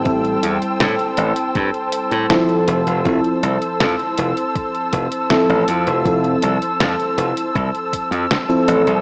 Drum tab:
HH |xxxxxxxxxxxxxxxx|xxxxxxxxxxxxxxxx|xxxxxxxxxxxxxxxx|
SD |----o-------o---|----o-------o---|----o-------o---|
BD |o-------o-------|o-------o-o-----|o-------o-o-----|